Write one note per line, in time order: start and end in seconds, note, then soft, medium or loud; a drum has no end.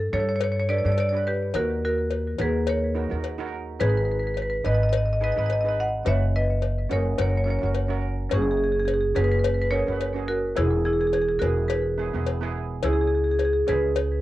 0.13 0.81 G2 loud
0.13 0.47 D4 medium
0.13 0.48 G4 medium
0.13 0.21 A4 medium
0.13 0.48 A4 medium
0.13 0.19 C#5 medium
0.20 0.28 C#5 medium
0.29 0.35 C#5 medium
0.36 0.43 C#5 medium
0.41 0.51 C#5 medium
0.41 cowbell loud
0.52 0.58 C#5 medium
0.60 0.66 C#5 medium
0.69 0.78 D4 medium
0.69 0.79 G4 medium
0.69 0.79 A4 medium
0.69 0.77 B4 medium
0.69 0.77 D5 loud
0.79 0.85 D5 medium
0.84 1.51 G2 medium
0.84 1.01 D4 medium
0.84 1.01 G4 medium
0.84 1.02 A4 medium
0.84 0.91 D5 medium
0.92 0.99 D5 medium
0.98 1.08 D5 medium
0.98 cowbell medium
1.09 1.38 D4 medium
1.09 1.15 D5 medium
1.13 1.38 G4 medium
1.13 1.39 B4 medium
1.13 1.23 D5 medium
1.27 1.53 G4 medium
1.27 1.56 B4 medium
1.54 2.35 D#2 loud
1.54 2.05 D#4 medium
1.54 2.06 F#4 medium
1.54 1.81 F#4 medium
1.54 1.84 A#4 medium
1.54 2.06 A#4 medium
1.54 cowbell medium
1.85 2.36 F#4 medium
1.85 2.42 A#4 medium
2.11 cowbell medium
2.39 3.07 D#2 loud
2.39 2.73 D#4 medium
2.39 2.74 F#4 medium
2.39 2.67 G#4 medium
2.39 2.74 A#4 medium
2.39 2.69 B4 medium
2.39 cowbell medium
2.67 3.49 A#4 medium
2.67 3.49 C#5 medium
2.67 cowbell medium
2.95 3.04 D#4 medium
2.95 3.05 F#4 medium
2.95 3.05 A#4 medium
3.10 3.77 D#2 medium
3.10 3.26 D#4 medium
3.10 3.27 F#4 medium
3.10 3.27 A#4 medium
3.24 cowbell medium
3.38 3.64 D#4 medium
3.38 3.64 F#4 medium
3.38 3.65 A#4 loud
3.80 4.61 G#1 loud
3.80 4.31 D#4 medium
3.80 4.31 G#4 medium
3.80 3.88 G#4 medium
3.80 3.88 B4 medium
3.80 4.32 B4 medium
3.80 cowbell medium
3.90 3.96 B4 medium
3.98 4.04 B4 medium
4.05 4.11 B4 medium
4.12 4.18 B4 medium
4.20 4.26 B4 soft
4.27 4.33 B4 medium
4.34 4.41 B4 soft
4.34 cowbell medium
4.42 4.49 B4 medium
4.50 4.57 B4 medium
4.64 5.33 G#1 medium
4.64 4.99 D#4 medium
4.64 4.99 G#4 medium
4.64 5.00 B4 medium
4.64 4.73 B4 medium
4.64 4.73 D#5 medium
4.64 cowbell medium
4.75 4.82 D#5 medium
4.83 4.88 D#5 medium
4.89 4.96 D#5 medium
4.89 cowbell loud
4.97 5.04 D#5 medium
5.05 5.12 D#5 medium
5.13 5.19 D#5 medium
5.21 5.30 D#4 medium
5.21 5.30 G#4 medium
5.21 5.31 B4 medium
5.21 5.30 B4 medium
5.21 5.31 D#5 loud
5.32 5.37 D#5 medium
5.36 6.03 G#1 medium
5.36 5.52 D#4 medium
5.36 5.53 G#4 medium
5.36 5.53 B4 medium
5.36 5.45 D#5 medium
5.46 5.51 D#5 medium
5.46 cowbell medium
5.53 5.59 D#5 medium
5.61 5.89 D#4 medium
5.61 5.90 G#4 medium
5.61 5.67 D#5 medium
5.65 5.90 B4 medium
5.65 5.75 D#5 medium
5.80 5.92 D#5 medium
5.80 5.92 F#5 medium
6.05 6.87 F#1 loud
6.05 6.57 C#4 medium
6.05 6.57 F#4 medium
6.05 6.58 B4 medium
6.05 6.33 C#5 medium
6.05 6.36 E5 loud
6.05 cowbell medium
6.36 6.88 B4 medium
6.36 6.93 D#5 loud
6.62 cowbell medium
6.89 7.17 F#1 medium
6.89 7.17 C#4 medium
6.89 7.17 F#4 medium
6.89 7.19 G#4 medium
6.89 7.18 A#4 medium
6.89 7.20 C#5 medium
6.89 cowbell medium
7.18 7.58 F#1 loud
7.18 7.41 C#4 medium
7.18 7.42 F#4 medium
7.18 7.42 A#4 medium
7.18 7.27 A#4 soft
7.18 7.28 C#5 medium
7.18 cowbell loud
7.30 7.36 C#5 soft
7.37 7.43 C#5 medium
7.44 7.55 C#4 medium
7.44 7.56 F#4 medium
7.44 7.56 A#4 medium
7.44 7.49 C#5 medium
7.50 7.57 C#5 medium
7.59 7.78 C#4 medium
7.59 7.78 F#4 medium
7.59 7.79 A#4 medium
7.59 7.65 C#5 medium
7.63 8.28 F#1 medium
7.63 7.72 C#5 medium
7.74 cowbell medium
7.88 8.15 C#4 medium
7.88 8.15 F#4 medium
7.88 8.15 A#4 medium
8.30 9.13 F#1 loud
8.30 8.82 C#4 medium
8.30 8.40 C#4 medium
8.30 8.82 F#4 medium
8.30 8.83 G#4 medium
8.30 cowbell loud
8.34 8.41 G#4 medium
8.42 8.49 G#4 medium
8.51 8.56 G#4 medium
8.57 8.62 G#4 medium
8.64 8.71 G#4 medium
8.72 8.78 G#4 medium
8.79 8.84 G#4 medium
8.85 8.92 G#4 medium
8.85 cowbell medium
8.94 8.99 G#4 medium
9.00 9.08 G#4 medium
9.15 9.84 F#1 loud
9.15 9.50 C#4 medium
9.15 9.50 F#4 medium
9.15 9.23 G#4 medium
9.15 9.51 G#4 medium
9.15 9.23 B4 medium
9.15 cowbell medium
9.24 9.30 B4 medium
9.31 9.38 B4 medium
9.39 9.45 B4 medium
9.44 9.53 B4 medium
9.44 cowbell loud
9.54 9.60 B4 medium
9.61 9.69 B4 medium
9.70 9.81 C#4 medium
9.70 9.81 F#4 medium
9.70 9.82 G#4 medium
9.70 10.24 A#4 medium
9.70 10.30 C#5 loud
9.87 10.53 F#1 medium
9.87 10.03 C#4 medium
9.87 10.04 F#4 medium
9.87 10.04 B4 medium
10.01 cowbell medium
10.14 10.41 C#4 medium
10.14 10.41 F#4 medium
10.14 10.41 G#4 medium
10.28 10.55 F#4 medium
10.28 10.58 A#4 medium
10.56 11.38 E1 loud
10.56 11.08 B3 medium
10.56 10.83 E4 medium
10.56 11.08 E4 medium
10.56 10.84 G#4 medium
10.56 11.09 G#4 medium
10.56 cowbell medium
10.85 10.93 E4 medium
10.85 10.92 G#4 medium
10.93 11.00 G#4 medium
11.01 11.06 G#4 medium
11.07 11.13 G#4 medium
11.13 11.20 G#4 medium
11.13 cowbell medium
11.22 11.27 G#4 medium
11.29 11.37 G#4 medium
11.39 12.10 E1 medium
11.39 11.76 B3 medium
11.39 11.76 E4 medium
11.39 11.67 F#4 medium
11.39 11.77 G#4 medium
11.39 11.70 A#4 medium
11.39 cowbell medium
11.68 12.50 G#4 medium
11.68 12.50 B4 medium
11.68 cowbell loud
11.98 12.07 B3 medium
11.98 12.08 E4 medium
11.98 12.08 G#4 medium
12.13 12.80 E1 medium
12.13 12.30 B3 medium
12.13 12.30 E4 medium
12.13 12.31 G#4 medium
12.26 cowbell medium
12.41 12.67 B3 medium
12.41 12.67 E4 medium
12.41 12.68 G#4 medium
12.83 13.64 C#2 loud
12.83 13.34 C#4 medium
12.83 13.34 E4 medium
12.83 12.91 E4 medium
12.83 13.35 G#4 medium
12.83 12.92 G#4 medium
12.83 cowbell loud
12.93 12.99 G#4 medium
13.01 13.06 G#4 medium
13.07 13.13 G#4 medium
13.15 13.22 G#4 medium
13.24 13.30 G#4 medium
13.31 13.37 G#4 medium
13.39 13.44 G#4 medium
13.39 cowbell medium
13.45 13.52 G#4 medium
13.53 13.59 G#4 medium
13.67 14.21 C#2 medium
13.67 14.02 C#4 medium
13.67 14.02 E4 medium
13.67 14.02 G#4 medium
13.67 14.21 G#4 medium
13.67 14.21 B4 loud
13.67 cowbell medium
13.96 cowbell loud